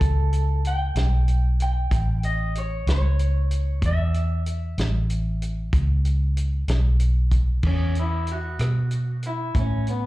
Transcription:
0.00 0.93 C#2 medium
0.00 0.69 A4 medium
0.00 kick medium
0.00 closed hi-hat medium
0.33 closed hi-hat medium
0.65 1.57 G5 medium
0.65 closed hi-hat medium
0.95 1.88 B1 medium
0.95 snare loud
0.95 closed hi-hat medium
1.28 closed hi-hat medium
1.60 2.21 G5 medium
1.60 closed hi-hat medium
1.91 2.84 A1 medium
1.91 kick loud
1.91 closed hi-hat medium
2.23 2.54 D#5 medium
2.23 closed hi-hat soft
2.55 2.88 C#5 medium
2.55 closed hi-hat medium
2.87 3.79 C#2 medium
2.87 3.85 C#5 medium
2.87 snare loud
2.87 closed hi-hat medium
3.19 closed hi-hat medium
3.51 closed hi-hat medium
3.82 4.75 E2 medium
3.82 kick loud
3.82 closed hi-hat medium
3.86 6.98 E5 medium
4.14 closed hi-hat soft
4.46 closed hi-hat medium
4.78 5.70 A1 medium
4.78 snare loud
4.78 closed hi-hat medium
5.10 closed hi-hat medium
5.42 closed hi-hat soft
5.73 6.66 C#2 medium
5.73 kick loud
5.73 closed hi-hat medium
6.05 closed hi-hat soft
6.37 closed hi-hat medium
6.68 7.61 B1 medium
6.68 snare medium
6.68 closed hi-hat medium
7.00 closed hi-hat medium
7.31 kick medium
7.31 closed hi-hat medium
7.63 8.56 E2 medium
7.63 7.96 C#4 medium
7.63 kick medium
7.63 crash medium
7.95 closed hi-hat soft
8.00 8.31 E4 medium
8.27 closed hi-hat soft
8.31 9.22 F#4 medium
8.59 9.52 B2 medium
8.59 cross-stick medium
8.59 closed hi-hat medium
8.91 closed hi-hat soft
9.23 closed hi-hat soft
9.27 9.56 E4 medium
9.55 10.06 A2 medium
9.55 kick medium
9.55 closed hi-hat medium
9.59 9.88 C#4 medium
9.87 10.06 B3 medium
9.87 closed hi-hat soft

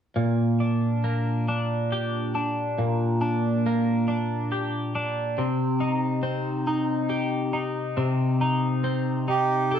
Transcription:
0.16 2.77 A#2 soft
0.60 1.47 D4 soft
1.04 3.65 A#3 soft
1.48 2.34 D4 soft
1.92 4.51 G4 soft
2.35 3.20 D4 soft
2.78 5.38 A#2 soft
3.21 4.07 D4 soft
3.66 5.47 A#3 soft
4.08 4.94 D4 soft
4.52 7.09 G4 soft
4.95 5.47 D4 soft
5.38 7.96 C3 medium
5.80 6.66 D#4 soft
6.23 8.83 C4 soft
6.67 7.52 D#4 soft
7.09 9.71 G4 soft
7.53 8.40 D#4 soft
7.97 9.79 C3 medium
8.41 9.27 D#4 soft
8.84 9.79 C4 soft
9.28 9.79 D#4 soft
9.28 9.73 G4 medium
9.71 9.79 G4 soft
9.71 9.79 A4 medium

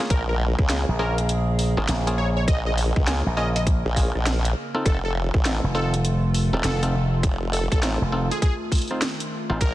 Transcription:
0.00 0.24 A#3 medium
0.00 0.24 C#4 medium
0.00 0.24 F4 medium
0.00 0.24 G#4 loud
0.10 0.56 A#1 loud
0.10 4.81 C#3 medium
0.10 4.81 A#3 medium
0.10 2.45 G#4 medium
0.10 0.22 A#4 medium
0.10 kick loud
0.10 closed hi-hat medium
0.29 0.36 A#4 medium
0.58 0.85 C#2 loud
0.58 kick loud
0.70 0.89 A#3 medium
0.70 0.89 C#4 medium
0.70 0.89 F4 medium
0.70 0.89 G#4 medium
0.70 snare loud
0.70 closed hi-hat medium
0.88 1.75 A#1 loud
0.99 1.19 A#3 medium
0.99 1.19 C#4 medium
0.99 1.19 F4 medium
0.99 1.19 G#4 loud
0.99 1.17 A#4 medium
1.18 closed hi-hat medium
1.29 closed hi-hat medium
1.59 open hi-hat medium
1.77 1.87 G#1 loud
1.77 2.03 A#3 medium
1.77 2.03 C#4 medium
1.77 2.03 F4 medium
1.77 2.03 G#4 loud
1.88 2.46 A#1 loud
1.88 snare loud
1.88 closed hi-hat medium
2.07 2.20 A#3 medium
2.07 2.20 C#4 medium
2.07 2.20 F4 medium
2.07 2.20 G#4 loud
2.07 closed hi-hat medium
2.18 2.30 C#5 medium
2.37 2.44 C#5 medium
2.48 2.93 A#1 loud
2.48 4.83 A#4 medium
2.48 2.60 D#5 medium
2.48 kick loud
2.48 closed hi-hat medium
2.66 2.73 D#5 medium
2.78 open hi-hat medium
2.96 3.23 C#2 loud
2.96 kick loud
3.07 3.27 A#3 loud
3.07 3.27 C#4 medium
3.07 3.27 F4 medium
3.07 3.27 G#4 loud
3.07 snare loud
3.07 closed hi-hat medium
3.26 3.82 A#1 loud
3.37 3.57 A#3 medium
3.37 3.57 C#4 medium
3.37 3.57 F4 medium
3.37 3.57 G#4 loud
3.37 3.49 D#5 medium
3.56 3.63 D#5 medium
3.56 closed hi-hat medium
3.67 kick loud
3.67 closed hi-hat medium
3.85 4.12 A#1 loud
3.96 4.16 A#3 medium
3.96 4.16 C#4 medium
3.96 4.16 F4 medium
3.96 4.16 G#4 medium
3.96 kick medium
3.96 open hi-hat medium
4.15 4.54 A#1 loud
4.15 cross-stick soft
4.26 snare loud
4.26 closed hi-hat medium
4.45 closed hi-hat medium
4.75 4.99 C4 medium
4.75 4.99 D#4 medium
4.75 4.99 F4 medium
4.75 4.99 A4 loud
4.75 cross-stick medium
4.85 5.31 F1 loud
4.85 9.57 D#3 medium
4.85 9.57 A3 medium
4.85 9.57 F4 medium
4.85 4.98 A4 medium
4.85 kick loud
4.85 closed hi-hat medium
5.05 5.12 A4 medium
5.34 5.61 A1 loud
5.34 kick loud
5.45 5.65 C4 medium
5.45 5.65 D#4 medium
5.45 5.65 F4 medium
5.45 5.65 A4 medium
5.45 snare loud
5.45 closed hi-hat medium
5.64 6.50 F1 loud
5.75 5.94 C4 medium
5.75 5.94 D#4 medium
5.75 5.94 F4 medium
5.75 5.94 A4 loud
5.75 5.92 A4 medium
5.94 closed hi-hat medium
6.05 closed hi-hat medium
6.34 open hi-hat medium
6.53 6.62 D#1 loud
6.53 6.78 C4 loud
6.53 6.78 D#4 medium
6.53 6.78 F4 medium
6.53 6.78 A4 loud
6.64 7.22 F1 loud
6.64 6.81 A4 loud
6.64 snare loud
6.64 closed hi-hat medium
6.83 6.95 C4 loud
6.83 6.95 D#4 medium
6.83 6.95 F4 medium
6.83 6.95 A4 loud
6.83 closed hi-hat medium
7.23 7.69 F1 loud
7.23 kick loud
7.23 closed hi-hat medium
7.53 7.65 A4 medium
7.53 open hi-hat medium
7.72 7.98 A1 loud
7.72 7.79 A4 medium
7.72 kick loud
7.72 closed hi-hat soft
7.83 8.02 C4 loud
7.83 8.02 D#4 medium
7.83 8.02 F4 medium
7.83 8.02 A4 loud
7.83 snare loud
7.83 closed hi-hat medium
8.01 8.28 F1 loud
8.12 8.32 C4 medium
8.12 8.32 D#4 medium
8.12 8.32 F4 medium
8.12 8.32 A4 loud
8.31 8.38 G#4 medium
8.31 closed hi-hat medium
8.42 8.54 G#4 medium
8.42 kick loud
8.42 closed hi-hat medium
8.72 kick medium
8.72 open hi-hat medium
8.75 open hi-hat soft
8.78 open hi-hat soft
8.81 open hi-hat soft
8.88 9.03 C4 medium
8.88 9.03 D#4 medium
8.88 9.03 F4 medium
8.88 9.03 C5 medium
8.88 cross-stick soft
8.88 open hi-hat soft
9.02 snare loud
9.02 closed hi-hat medium
9.20 closed hi-hat medium
9.50 9.59 A1 medium
9.50 9.59 C4 medium
9.50 9.59 D#4 medium
9.50 9.59 F4 medium
9.50 9.59 C5 loud
9.50 cross-stick soft
9.61 9.74 A#1 loud
9.61 9.74 C#3 medium
9.61 9.74 A#3 medium
9.61 9.74 G#4 medium
9.61 9.73 A#4 medium
9.61 kick loud
9.61 closed hi-hat medium

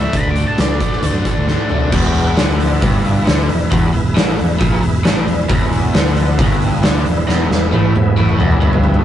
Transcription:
0.00 0.12 A2 medium
0.00 0.13 E3 medium
0.00 0.13 A3 medium
0.00 0.12 C#4 medium
0.00 0.11 E4 medium
0.00 0.12 A4 medium
0.00 0.11 C#5 medium
0.00 0.15 E5 medium
0.13 0.23 D2 medium
0.13 0.34 D3 medium
0.13 0.35 A3 medium
0.13 0.36 D4 medium
0.13 0.29 D#4 medium
0.13 0.29 G4 medium
0.13 0.29 A#4 medium
0.13 0.29 D#5 medium
0.13 kick loud
0.13 closed hi-hat medium
0.17 0.30 B5 loud
0.25 0.44 D2 medium
0.25 1.91 D4 medium
0.25 1.90 F#4 medium
0.25 1.91 A4 medium
0.25 1.91 D5 medium
0.31 0.44 D6 medium
0.36 0.56 D3 medium
0.36 0.57 A3 medium
0.36 0.57 D4 medium
0.36 closed hi-hat medium
0.47 0.60 A5 medium
0.57 0.77 C#2 medium
0.57 0.79 D3 medium
0.57 0.79 A3 medium
0.57 0.80 D4 medium
0.57 1.03 D5 loud
0.57 snare loud
0.57 closed hi-hat medium
0.80 1.01 D3 medium
0.80 1.02 A3 medium
0.80 1.03 D4 medium
0.80 kick medium
0.80 closed hi-hat medium
0.92 snare soft
1.03 1.12 D2 medium
1.03 1.24 D3 medium
1.03 1.25 A3 medium
1.03 1.26 D4 medium
1.03 closed hi-hat medium
1.14 1.24 F#2 medium
1.25 1.46 D3 medium
1.25 1.47 A3 medium
1.25 1.47 D4 medium
1.25 kick medium
1.25 closed hi-hat medium
1.36 1.55 D2 medium
1.47 1.68 D3 medium
1.47 1.69 A3 medium
1.47 1.70 D4 medium
1.47 snare soft
1.70 1.91 D3 medium
1.70 1.91 A3 medium
1.70 1.92 D4 medium
1.70 mid tom medium
1.81 floor tom medium
1.92 2.34 E1 medium
1.92 2.37 E2 loud
1.92 5.46 E4 medium
1.92 5.46 G#4 medium
1.92 5.46 B4 medium
1.92 5.46 E5 medium
1.92 kick loud
1.92 crash loud
2.15 open hi-hat medium
2.37 2.79 D2 medium
2.37 2.81 D3 medium
2.37 snare loud
2.37 open hi-hat medium
2.60 open hi-hat medium
2.81 3.24 G1 loud
2.81 3.26 G2 loud
2.81 kick loud
2.81 open hi-hat medium
3.05 open hi-hat medium
3.26 3.48 D2 medium
3.26 3.48 D3 loud
3.26 snare loud
3.26 open hi-hat medium
3.49 3.70 E1 medium
3.49 3.67 E2 medium
3.49 open hi-hat medium
3.71 3.92 E1 loud
3.71 3.92 E2 loud
3.71 kick loud
3.71 open hi-hat medium
3.93 4.15 E1 medium
3.93 4.11 E2 medium
3.93 open hi-hat medium
4.15 4.37 A1 loud
4.15 4.37 A2 loud
4.15 snare loud
4.15 open hi-hat medium
4.37 4.59 E1 medium
4.37 4.55 E2 medium
4.37 open hi-hat medium
4.60 4.81 A#1 loud
4.60 4.82 A#2 loud
4.60 kick loud
4.60 open hi-hat medium
4.82 5.04 E1 medium
4.82 5.00 E2 medium
4.82 open hi-hat medium
5.04 5.26 A1 loud
5.04 5.26 A2 loud
5.04 snare loud
5.04 open hi-hat medium
5.27 5.48 E1 medium
5.27 5.45 E2 medium
5.27 open hi-hat medium
5.48 5.91 E1 loud
5.48 5.93 E2 loud
5.48 9.02 E4 medium
5.48 9.01 G#4 medium
5.48 9.01 B4 medium
5.48 9.01 E5 medium
5.48 kick loud
5.48 open hi-hat medium
5.73 open hi-hat medium
5.94 6.35 D2 medium
5.94 6.38 D3 loud
5.94 snare loud
5.94 open hi-hat medium
6.17 open hi-hat medium
6.39 6.80 G1 loud
6.39 6.83 G2 loud
6.39 kick loud
6.39 open hi-hat medium
6.62 open hi-hat medium
6.83 7.04 D2 loud
6.83 7.05 D3 loud
6.83 snare loud
6.83 open hi-hat medium
7.05 7.26 E1 medium
7.05 7.23 E2 medium
7.05 open hi-hat medium
7.28 7.48 E1 loud
7.28 7.49 E2 loud
7.28 snare medium
7.50 7.71 E1 medium
7.50 7.68 E2 medium
7.50 snare medium
7.72 7.93 A1 loud
7.72 7.94 A2 loud
7.72 high tom medium
7.94 8.15 E1 medium
7.94 8.12 E2 medium
7.94 high tom medium
8.17 8.37 A1 medium
8.17 8.39 A2 loud
8.17 mid tom medium
8.29 mid tom medium
8.38 8.60 E1 medium
8.38 8.60 E2 loud
8.38 mid tom medium
8.51 mid tom medium
8.61 9.03 G1 medium
8.61 9.04 G2 loud
8.61 mid tom medium
8.73 floor tom medium
8.84 floor tom loud
8.94 floor tom medium

